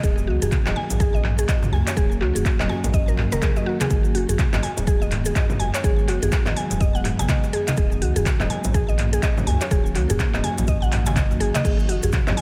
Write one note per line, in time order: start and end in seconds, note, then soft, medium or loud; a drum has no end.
0.00 0.29 D#1 loud
0.00 3.86 D#3 medium
0.00 7.73 F#3 medium
0.00 3.87 A#3 medium
0.00 3.87 C#4 medium
0.00 5.80 F#4 medium
0.00 0.16 G#4 medium
0.00 kick loud
0.00 closed hi-hat soft
0.00 muted conga medium
0.00 cabasa medium
0.18 djembe tone medium
0.18 cabasa soft
0.27 0.38 C#2 medium
0.27 0.35 F#4 medium
0.42 0.49 D#1 loud
0.42 0.51 G#4 medium
0.42 closed hi-hat medium
0.42 muted conga soft
0.42 djembe bass medium
0.42 cabasa medium
0.52 kick loud
0.52 clap medium
0.52 closed hi-hat soft
0.52 high conga medium
0.52 cabasa medium
0.66 0.73 D#1 medium
0.66 0.75 D#5 medium
0.66 clap loud
0.66 djembe tone medium
0.66 low conga loud
0.66 cabasa soft
0.76 0.84 G#5 loud
0.76 muted conga soft
0.90 1.44 A#1 medium
0.90 closed hi-hat medium
0.90 low conga medium
0.90 cabasa medium
1.00 1.13 G#4 loud
1.00 kick loud
1.00 closed hi-hat soft
1.00 djembe tone loud
1.00 cabasa medium
1.14 1.24 D#5 medium
1.14 muted conga soft
1.14 cabasa soft
1.24 clap medium
1.24 mid tom medium
1.38 1.47 G#4 medium
1.38 closed hi-hat medium
1.38 cabasa medium
1.48 1.56 D#5 loud
1.48 kick loud
1.48 clap loud
1.48 closed hi-hat soft
1.48 muted conga soft
1.48 djembe tone medium
1.48 cabasa medium
1.62 mid tom loud
1.62 djembe slap medium
1.62 high conga medium
1.62 low conga medium
1.62 cabasa soft
1.72 1.83 C#2 medium
1.72 1.80 G#5 loud
1.72 djembe bass medium
1.87 1.96 C#5 medium
1.87 clap loud
1.87 closed hi-hat medium
1.87 djembe slap medium
1.87 djembe tone medium
1.87 cabasa medium
1.97 2.22 D#1 loud
1.97 2.10 G#4 loud
1.97 kick loud
1.97 closed hi-hat soft
1.97 muted conga medium
1.97 cabasa medium
2.12 cabasa soft
2.21 2.32 C#2 medium
2.21 2.34 F#4 medium
2.21 clap soft
2.35 2.43 D#1 loud
2.35 2.44 G#4 medium
2.35 closed hi-hat medium
2.35 muted conga soft
2.35 djembe tone medium
2.35 djembe bass medium
2.35 cabasa medium
2.45 kick loud
2.45 clap loud
2.45 closed hi-hat soft
2.45 cabasa medium
2.60 2.67 D#1 medium
2.60 2.68 D#5 medium
2.60 clap loud
2.60 low conga loud
2.60 cabasa soft
2.69 2.77 G#5 loud
2.69 muted conga soft
2.69 djembe tone loud
2.84 3.26 A#1 medium
2.84 closed hi-hat medium
2.84 djembe slap medium
2.84 low conga medium
2.84 cabasa medium
2.94 3.07 D#5 loud
2.94 kick loud
2.94 closed hi-hat soft
2.94 djembe bass medium
2.94 cabasa medium
3.08 3.13 A#4 medium
3.08 muted conga soft
3.08 cabasa soft
3.18 clap medium
3.18 mid tom medium
3.18 djembe slap medium
3.18 djembe tone medium
3.32 3.40 D#1 medium
3.32 3.41 A#4 loud
3.32 closed hi-hat medium
3.32 djembe slap loud
3.32 high conga medium
3.32 cabasa medium
3.42 3.55 G#4 medium
3.42 kick loud
3.42 clap loud
3.42 closed hi-hat soft
3.42 muted conga medium
3.42 high conga medium
3.42 cabasa medium
3.56 3.65 D#5 medium
3.56 djembe slap medium
3.56 djembe tone loud
3.56 cabasa soft
3.66 3.79 F#4 loud
3.81 3.86 G#4 loud
3.81 clap medium
3.81 closed hi-hat medium
3.81 high conga loud
3.81 cabasa medium
3.90 4.16 G#1 loud
3.90 12.41 D#3 medium
3.90 7.74 G#3 medium
3.90 7.74 B3 medium
3.90 4.03 G#4 medium
3.90 kick loud
3.90 closed hi-hat soft
3.90 muted conga soft
3.90 cabasa medium
4.05 cabasa soft
4.15 4.25 F#1 medium
4.15 4.22 F#4 medium
4.15 open hi-hat medium
4.15 djembe tone medium
4.29 4.36 G#1 loud
4.29 4.38 G#4 medium
4.29 closed hi-hat medium
4.29 muted conga soft
4.29 djembe bass medium
4.29 cabasa medium
4.39 kick loud
4.39 clap loud
4.39 closed hi-hat soft
4.39 high conga medium
4.39 cabasa medium
4.53 4.60 G#1 medium
4.53 4.62 D#5 medium
4.53 clap loud
4.53 djembe tone medium
4.53 low conga loud
4.53 cabasa soft
4.63 4.71 G#5 loud
4.63 open hi-hat medium
4.63 muted conga soft
4.77 5.32 D#1 medium
4.77 closed hi-hat medium
4.77 low conga medium
4.77 cabasa medium
4.87 5.00 G#4 loud
4.87 kick loud
4.87 closed hi-hat soft
4.87 cabasa medium
5.01 5.11 D#5 medium
5.01 muted conga soft
5.01 djembe tone medium
5.01 cabasa soft
5.12 clap medium
5.12 mid tom medium
5.12 open hi-hat medium
5.25 5.35 G#4 medium
5.25 closed hi-hat medium
5.25 cabasa medium
5.35 5.43 D#5 loud
5.35 kick loud
5.35 clap loud
5.35 closed hi-hat soft
5.35 muted conga soft
5.35 djembe tone medium
5.35 cabasa medium
5.49 mid tom loud
5.49 djembe slap medium
5.49 high conga medium
5.49 low conga medium
5.49 cabasa soft
5.59 5.70 F#1 medium
5.59 5.67 G#5 loud
5.59 open hi-hat medium
5.59 djembe bass medium
5.74 5.84 C#5 medium
5.74 clap loud
5.74 closed hi-hat medium
5.74 djembe slap medium
5.74 cabasa medium
5.84 6.09 G#1 medium
5.84 7.76 G#4 medium
5.84 5.97 G#4 loud
5.84 kick loud
5.84 closed hi-hat soft
5.84 muted conga soft
5.84 djembe tone medium
5.84 cabasa medium
5.98 cabasa soft
6.08 6.19 F#1 medium
6.08 6.21 F#4 medium
6.08 clap medium
6.08 open hi-hat medium
6.22 6.30 G#1 loud
6.22 6.31 G#4 medium
6.22 closed hi-hat medium
6.22 muted conga soft
6.22 djembe tone loud
6.22 djembe bass medium
6.22 cabasa medium
6.32 kick loud
6.32 clap loud
6.32 closed hi-hat soft
6.32 cabasa medium
6.46 6.54 G#1 medium
6.46 6.56 D#5 medium
6.46 clap loud
6.46 low conga loud
6.46 cabasa soft
6.56 6.64 G#5 loud
6.56 open hi-hat medium
6.56 muted conga soft
6.70 7.13 D#1 medium
6.70 closed hi-hat medium
6.70 djembe slap medium
6.70 djembe tone medium
6.70 low conga medium
6.70 cabasa medium
6.80 6.94 D#5 loud
6.80 kick loud
6.80 closed hi-hat soft
6.80 djembe bass medium
6.80 cabasa medium
6.95 7.00 F#5 loud
6.95 muted conga soft
6.95 cabasa soft
7.04 clap medium
7.04 mid tom medium
7.04 open hi-hat medium
7.04 djembe slap medium
7.04 djembe tone medium
7.19 7.27 G#1 medium
7.19 7.25 G#5 loud
7.19 closed hi-hat medium
7.19 djembe slap loud
7.19 high conga medium
7.19 cabasa medium
7.28 7.43 D#5 medium
7.28 kick loud
7.28 clap loud
7.28 closed hi-hat soft
7.28 muted conga medium
7.28 high conga loud
7.28 cabasa medium
7.44 djembe slap medium
7.44 cabasa soft
7.53 7.66 G#4 loud
7.53 open hi-hat medium
7.53 djembe tone medium
7.68 7.77 D#5 loud
7.68 clap medium
7.68 closed hi-hat medium
7.68 high conga loud
7.68 cabasa medium
7.77 8.03 D#1 loud
7.77 12.41 F#3 medium
7.77 11.61 A#3 medium
7.77 11.61 C#4 medium
7.77 12.41 F#4 medium
7.77 7.90 G#4 medium
7.77 kick loud
7.77 closed hi-hat soft
7.77 muted conga soft
7.77 cabasa medium
7.92 djembe tone medium
7.92 cabasa soft
8.02 8.12 C#2 medium
8.02 8.10 F#4 medium
8.02 open hi-hat medium
8.16 8.24 D#1 loud
8.16 8.25 G#4 medium
8.16 closed hi-hat medium
8.16 muted conga soft
8.16 djembe bass loud
8.16 cabasa medium
8.25 kick loud
8.25 clap loud
8.25 closed hi-hat soft
8.25 high conga medium
8.25 cabasa medium
8.39 8.48 D#1 medium
8.39 8.49 D#5 medium
8.39 clap medium
8.39 djembe tone medium
8.39 low conga loud
8.39 cabasa soft
8.50 8.58 G#5 loud
8.50 open hi-hat medium
8.50 muted conga medium
8.64 9.19 A#1 medium
8.64 closed hi-hat medium
8.64 low conga medium
8.64 cabasa medium
8.74 8.87 G#4 loud
8.74 kick loud
8.74 closed hi-hat soft
8.74 djembe tone medium
8.74 cabasa medium
8.89 8.98 D#5 medium
8.89 muted conga soft
8.89 cabasa soft
8.99 clap medium
8.99 mid tom medium
8.99 open hi-hat medium
9.13 9.22 G#4 medium
9.13 closed hi-hat medium
9.13 cabasa medium
9.23 9.31 D#5 loud
9.23 kick loud
9.23 clap loud
9.23 closed hi-hat soft
9.23 muted conga medium
9.23 djembe tone medium
9.23 cabasa medium
9.37 mid tom loud
9.37 djembe slap medium
9.37 high conga medium
9.37 low conga loud
9.37 cabasa soft
9.47 9.58 C#2 medium
9.47 9.55 G#5 loud
9.47 open hi-hat medium
9.47 djembe bass loud
9.61 9.71 C#5 medium
9.61 clap medium
9.61 closed hi-hat medium
9.61 djembe slap medium
9.61 djembe tone loud
9.61 cabasa medium
9.71 9.97 D#1 loud
9.71 9.84 G#4 loud
9.71 kick loud
9.71 closed hi-hat soft
9.71 muted conga medium
9.71 high conga medium
9.71 cabasa medium
9.86 cabasa soft
9.95 10.06 C#2 medium
9.95 10.08 F#4 medium
9.95 clap medium
9.95 open hi-hat medium
10.09 10.17 D#1 medium
10.09 10.19 G#4 medium
10.09 closed hi-hat medium
10.09 mid tom medium
10.09 muted conga soft
10.09 djembe tone medium
10.09 djembe bass loud
10.09 cabasa medium
10.19 kick loud
10.19 clap loud
10.19 closed hi-hat soft
10.19 high conga medium
10.19 cabasa medium
10.34 10.41 D#1 medium
10.34 10.43 D#5 medium
10.34 clap medium
10.34 low conga loud
10.34 cabasa soft
10.44 10.51 G#5 loud
10.44 open hi-hat loud
10.44 muted conga medium
10.44 djembe tone loud
10.58 11.08 A#1 medium
10.58 closed hi-hat medium
10.58 djembe slap medium
10.58 low conga medium
10.58 cabasa medium
10.67 10.81 D#5 loud
10.67 kick loud
10.67 closed hi-hat soft
10.67 djembe bass medium
10.67 cabasa medium
10.82 10.87 F#5 loud
10.82 muted conga soft
10.82 cabasa soft
10.92 clap medium
10.92 mid tom medium
10.92 open hi-hat medium
10.92 djembe slap medium
10.92 djembe tone medium
11.06 11.32 G#1 medium
11.06 11.12 G#5 loud
11.06 closed hi-hat medium
11.06 djembe slap loud
11.06 high conga medium
11.06 cabasa medium
11.16 11.30 D#5 medium
11.16 kick loud
11.16 clap loud
11.16 closed hi-hat soft
11.16 muted conga medium
11.16 high conga medium
11.16 cabasa medium
11.31 11.38 A#1 medium
11.31 djembe slap medium
11.31 djembe tone medium
11.31 cabasa soft
11.40 11.51 G#1 medium
11.40 11.53 G#4 loud
11.40 open hi-hat medium
11.55 11.64 D#5 loud
11.55 clap medium
11.55 closed hi-hat medium
11.55 high conga loud
11.55 cabasa medium
11.64 11.90 G#1 loud
11.64 12.41 G#3 medium
11.64 12.41 B3 medium
11.64 11.78 G#4 medium
11.64 kick loud
11.64 closed hi-hat soft
11.64 crash medium
11.64 muted conga medium
11.64 cabasa medium
11.79 cabasa soft
11.89 12.00 F#1 medium
11.89 11.97 F#4 medium
11.89 open hi-hat medium
11.89 djembe tone medium
12.03 12.10 G#1 loud
12.03 12.12 G#4 medium
12.03 closed hi-hat medium
12.03 muted conga soft
12.03 djembe bass medium
12.03 cabasa medium
12.12 kick loud
12.12 clap loud
12.12 closed hi-hat soft
12.12 high conga medium
12.12 cabasa medium
12.27 12.35 G#1 medium
12.27 12.36 D#5 medium
12.27 clap loud
12.27 djembe tone loud
12.27 low conga loud
12.27 cabasa soft
12.37 12.41 G#5 loud
12.37 open hi-hat medium
12.37 muted conga medium